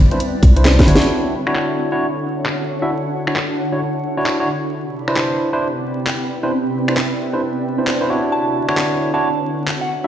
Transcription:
Already playing: analog synth pad G3 E4 D5 B5, ambient pad C4 B4 D5 E5
0.11 tine electric piano D4 E4 B4 C5, closed hi-hat
0.20 closed hi-hat
0.43 fm bass C2, kick, open hi-hat
0.56 tine electric piano D4 E4 B4 C5, closed hi-hat
0.65 snare, clap
0.79 tine electric piano D4 E4 B4 C5, kick, snare, closed hi-hat
0.88 fm bass G1, tine electric piano D4 E4 F#4 C#5, open hi-hat
0.95 snare
1.02 closed hi-hat
1.10 analog synth pad D3 E4 F#4 A4 C#5, ambient pad D4
1.25 ambient pad F#5
1.32 ambient pad C#5
1.47 tine electric piano D4 E4 F#4 C#5, finger snap
1.55 clap
1.92 tine electric piano D4 E4 F#4 C#5
2.46 clap
2.82 tine electric piano D4 E4 F#4 E5
3.27 tine electric piano D4 E4 F#4 C#5, finger snap
3.36 clap
3.72 tine electric piano D4 E4 F#4 C#5
4.17 tine electric piano D4 E4 F#4 C#5
4.26 clap
4.40 tine electric piano D4 E4 F#4 C#5
4.71 analog synth pad C3 G4 D5 B5, ambient pad C4
5.08 tine electric piano D4 E4 B4 C5, finger snap
5.16 clap
5.36 ambient pad B4
5.53 tine electric piano D4 E4 B4 C5
5.83 ambient pad D5
6.07 clap
6.43 tine electric piano D4 E4 B4 C5
6.52 analog synth pad E5
6.88 tine electric piano D4 E4 B4 C5, finger snap
6.97 clap
7.33 tine electric piano D4 E4 B4 C5
7.78 tine electric piano D4 E4 B4 C5
7.87 clap
8.01 tine electric piano D4 E4 B4 C5
8.10 tine electric piano D4 E4 F#4 C#5
8.32 analog synth pad D3 F#4 A4 C#5, ambient pad D4, synth bell A5
8.64 ambient pad E5
8.69 tine electric piano D4 E4 F#4 C#5, finger snap
8.77 clap
8.83 ambient pad F#5
9.14 tine electric piano D4 E4 F#4 C#5, ambient pad C#5, synth bell A5
9.68 clap
9.81 synth bell F#5

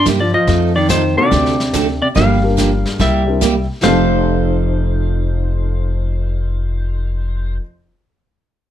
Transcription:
Already playing: upright bass G2
0.05 steel-string acoustic guitar C3 G3 A#3 E4 G4, kick, snare, hi-hat pedal
0.20 hollow-body jazz guitar F3, electric slide guitar D5
0.34 hollow-body jazz guitar F3, electric slide guitar D#5
0.47 upright bass F2, steel-string acoustic guitar F3 A3 D#4 A4, brush sweep, kick, snare
0.76 hollow-body jazz guitar D#3, electric slide guitar D5
0.89 hollow-body jazz guitar D#3, steel-string acoustic guitar F3 A3 D#4 A4, electric slide guitar C5, kick, snare, hi-hat pedal
1.16 hollow-body jazz guitar C3, upright piano C4 D4 D#4 F#4 A4, electric slide guitar D5
1.31 upright bass D2, steel-string acoustic guitar D3 A3 C4 F#4 A4, brush sweep, kick, snare
1.46 snare
1.60 snare
1.73 steel-string acoustic guitar D3 A3 C4 F#4 A4, kick, snare, hi-hat pedal
2.02 hollow-body jazz guitar C3, electric slide guitar D5
2.15 upright bass G1, steel-string acoustic guitar D3 F3 A#3 D4 G4, hollow-body jazz guitar G3, electric slide guitar F5, brush sweep, kick, snare
2.43 upright piano A#3 D4 F4 G4 A#4
2.57 steel-string acoustic guitar D3 F3 A#3 D4 G4, kick, snare, hi-hat pedal
2.85 snare
2.99 upright bass C2, steel-string acoustic guitar C3 G3 A#3 E4 G4, hollow-body jazz guitar G3, electric slide guitar E5, brush sweep, kick, snare
3.27 upright piano C4 D4 E4 G4 A#4
3.41 steel-string acoustic guitar C3 G3 A#3 E4 G4, kick, snare, hi-hat pedal
3.82 upright bass F1, upright piano F2 F3 D#4 G4 A4, steel-string acoustic guitar F3 A3 D#4 A4, hollow-body jazz guitar A3, pedal steel guitar C5, electric slide guitar F5, snare

